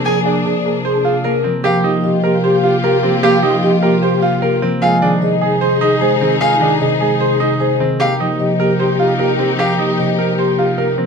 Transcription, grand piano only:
0.00 0.11 C4 medium
0.06 0.31 G#4 medium
0.25 0.51 D4 medium
0.85 1.11 C5 medium
1.05 1.31 F4 medium
1.25 1.50 A#4 medium
1.44 1.70 C4 medium
1.64 1.90 G4 medium
1.84 2.10 D#4 medium
2.24 2.50 A#4 medium
2.44 2.70 C5 medium
2.64 2.89 F4 medium
2.84 3.09 A#4 medium
3.03 3.29 C4 medium
3.23 3.49 G4 medium
3.43 3.69 D#4 medium
3.83 4.09 A#4 medium
4.03 4.28 C5 medium
4.22 4.48 F4 medium
4.42 4.68 A#4 medium
4.62 4.88 C4 medium
4.82 5.08 F4 medium
5.02 5.28 D4 medium
5.41 5.68 G#4 medium
5.61 5.87 C5 medium
5.81 6.07 D#4 medium
6.01 6.27 G#4 medium
6.21 6.47 C4 medium
6.41 6.67 F4 medium
6.61 6.87 D4 medium
7.01 7.27 G#4 medium
7.21 7.46 C5 medium
7.40 7.66 D#4 medium
7.60 7.86 G#4 medium
7.80 8.06 C4 medium
8.00 8.26 G4 medium
8.20 8.46 D#4 medium
8.60 8.86 A#4 medium
8.80 9.05 C5 medium
8.99 9.25 F4 medium
9.19 9.45 A#4 medium
9.39 9.65 C4 medium
9.59 9.85 G4 medium
9.79 10.05 D#4 medium
10.19 10.44 A#4 medium
10.39 10.64 C5 medium
10.59 10.84 F4 medium
10.78 11.04 A#4 medium
10.98 11.06 C4 medium

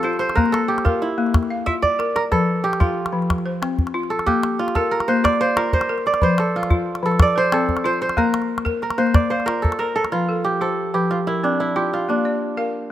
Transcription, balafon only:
0.04 0.37 F4 medium
0.37 0.69 A#3 medium
0.85 1.18 A#4 medium
1.18 1.51 A#3 medium
1.50 2.00 F5 medium
1.67 2.00 F4 medium
1.99 2.32 A#4 medium
2.32 2.64 F3 medium
2.80 3.29 F4 medium
3.12 3.46 F3 medium
3.46 3.95 C5 medium
3.62 3.95 C4 medium
3.94 4.27 F4 medium
4.27 4.60 A#3 medium
4.76 5.25 A#4 medium
5.09 5.41 A#3 medium
5.41 5.90 F5 medium
5.57 5.90 F4 medium
5.89 6.22 A#4 medium
6.22 6.54 F3 medium
6.70 7.03 F4 medium
7.03 7.36 F3 medium
7.36 7.85 C5 medium
7.52 7.85 C4 medium
7.84 8.17 F4 medium
8.17 8.50 A#3 medium
8.65 9.14 A#4 medium
8.98 9.31 A#3 medium
9.31 9.80 F5 medium
9.47 9.80 F4 medium
9.80 10.12 A#4 medium
10.12 10.45 F3 medium
10.29 10.78 A4 medium
10.61 10.94 F4 medium
10.61 11.10 C5 medium
10.94 11.27 F3 medium
11.27 11.76 A#4 medium
11.43 11.76 C4 medium
11.76 12.09 F4 medium
12.09 12.42 A#3 medium
12.25 12.74 D5 medium
12.57 12.91 A#4 medium
12.57 12.92 F5 medium

